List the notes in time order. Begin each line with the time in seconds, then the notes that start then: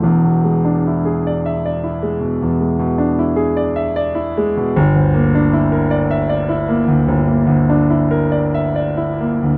0.02 E1 E2
0.24 B2
0.44 G#3
0.65 D4
0.87 E4
1.05 G#4
1.27 D5
1.46 E5
1.66 D5
1.84 E4
2.02 G#3
2.20 B2
2.42 E2
2.60 G#3
2.79 B2
2.98 D4
3.19 E4
3.36 G#4
3.57 D5
3.76 E5
3.96 D5
4.15 E4
4.37 G#3
4.57 B2
4.76 G1
4.95 D2
5.14 A#3
5.35 D4
5.53 E4
5.72 A#4
5.91 D5
6.11 E5
6.29 D5
6.49 E4
6.68 A#3
6.88 D2
7.08 G1
7.28 A#3
7.47 D2
7.69 D4
7.90 E4
8.11 A#4
8.32 D5
8.54 E5
8.76 D5
8.97 E4
9.20 A#3
9.43 D2